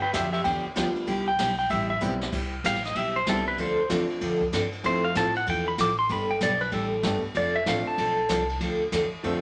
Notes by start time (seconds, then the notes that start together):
Already playing: G2
0.02 B4 G5
0.13 F2 D3 F3 B3 D4 G4 E5, kick, snare, hi-hat pedal, ride
0.32 G4 E5, ride
0.44 E2 D3 F3 B3 D4 G4 G5, kick, ride
0.65 muted upright bass stroke
0.76 D2 D3 F3 G3 B3 D4 F4 G4, kick, snare, hi-hat pedal, ride
0.96 ride
1.07 C2 C3 G3 B3 E4 G4, kick, ride
1.28 G5
1.39 B1 C3 G3 B3 E4 G4, kick, snare, hi-hat pedal, ride
1.59 G5, ride
1.70 A1 C3 G3 B3 E4 G4 E5, kick, ride
1.90 E5
2.01 B1 C3 E3 G3 B3 C4 E4 G4, hi-hat pedal
2.21 snare
2.32 C2 C3 G3 B3 E4 G4, kick, crash
2.64 A1 C3 G3 B3 E4 G4 F5, kick, snare, hi-hat pedal, ride
2.75 snare
2.84 D#5, snare, ride
2.95 B1 C3 G3 B3 E4 G4 E5, kick, ride
3.16 C5
3.27 C2 C3 E3 G3 B3 C4 E4 G4 A4, kick, snare, hi-hat pedal, ride
3.48 B4
3.58 D2 D3 F3 C4 D4 A4 C5, kick, ride
3.89 E2 D3 F3 A3 C4 D4 F4 A4, kick, snare, hi-hat pedal, ride
4.09 muted upright bass stroke, ride
4.21 F2 D3 F3 C4 D4 A4, kick, ride
4.41 kick
4.52 G2 D3 F3 C4 D4 A4, kick, snare, hi-hat pedal, ride
4.72 ride
4.83 F2 F3 A3 C4 E4 F4 A4 C5, kick, ride
5.04 F5
5.15 A2 F3 A3 C4 E4 F4 A4 A5, kick, snare, hi-hat pedal, ride
5.35 F#5, ride
5.46 E2 F3 C4 E4 A4 G5, kick, ride
5.68 B5
5.78 A1 F3 C4 E4 A4 D6, kick, snare, hi-hat pedal, ride
5.99 C6
6.09 G1 G3 B3 D4 A4 B5, kick, ride
6.31 G5
6.41 B1 G3 B3 D4 A4 D5, kick, snare, hi-hat pedal, ride
6.60 B4, ride
6.72 A1 G3 B3 D4 A4, kick, ride
7.02 G1 G3 A3 B3 D4 G4 A4, kick, snare, hi-hat pedal, ride
7.23 muted upright bass stroke
7.35 F1 F3 C4 D4 A4 D5, kick, ride
7.56 E5
7.66 A1 F3 A3 C4 D4 F4 A4 F5, kick, snare, hi-hat pedal, ride
7.86 A5, muted upright bass stroke
7.98 B1 F3 C4 D4 A4, kick, ride
8.29 C2 F3 C4 D4 A4, kick, snare, hi-hat pedal, ride
8.49 ride
8.61 D2 D3 F3 C4 D4 A4, kick, ride
8.92 E2 D3 F3 C4 D4 A4, kick, snare, hi-hat pedal, ride
9.12 muted upright bass stroke
9.23 F2 D3 F3 A3 C4 D4 F4 A4, kick, ride